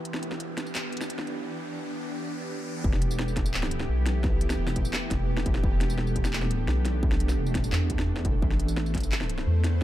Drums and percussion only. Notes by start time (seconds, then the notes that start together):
0.05 closed hi-hat
0.14 snare
0.23 closed hi-hat
0.32 snare
0.40 closed hi-hat
0.58 snare, closed hi-hat, tambourine
0.67 tambourine
0.75 clap, snare, closed hi-hat
0.93 closed hi-hat
0.97 closed hi-hat
1.01 snare, tambourine
1.10 closed hi-hat
1.19 snare
1.27 closed hi-hat
2.84 kick
2.93 snare
3.02 closed hi-hat
3.11 tambourine
3.19 snare
3.28 tambourine
3.37 kick, snare, closed hi-hat
3.46 tambourine
3.54 clap
3.63 snare
3.71 closed hi-hat
3.80 snare
4.06 snare, closed hi-hat
4.24 kick, snare
4.41 closed hi-hat
4.50 snare, tambourine
4.67 snare, tambourine
4.76 kick, closed hi-hat
4.85 tambourine
4.93 clap, snare
5.11 kick, snare, closed hi-hat
5.37 snare
5.46 kick, closed hi-hat
5.55 snare
5.64 kick
5.81 snare, closed hi-hat
5.90 tambourine
5.98 snare
6.07 tambourine
6.16 kick, closed hi-hat
6.25 snare, tambourine
6.33 clap
6.42 snare
6.51 closed hi-hat
6.68 snare
6.85 snare, closed hi-hat
7.03 kick
7.12 snare
7.20 closed hi-hat
7.29 snare, tambourine
7.47 tambourine
7.55 kick, snare, closed hi-hat
7.64 tambourine
7.72 clap, snare
7.90 kick, closed hi-hat
7.99 snare
8.16 snare
8.25 kick, closed hi-hat
8.42 kick
8.51 snare
8.60 closed hi-hat
8.68 tambourine
8.77 snare
8.86 tambourine
8.95 kick, snare, closed hi-hat
8.98 closed hi-hat
9.00 closed hi-hat, tambourine
9.12 clap
9.21 snare
9.30 closed hi-hat
9.38 snare
9.64 snare, closed hi-hat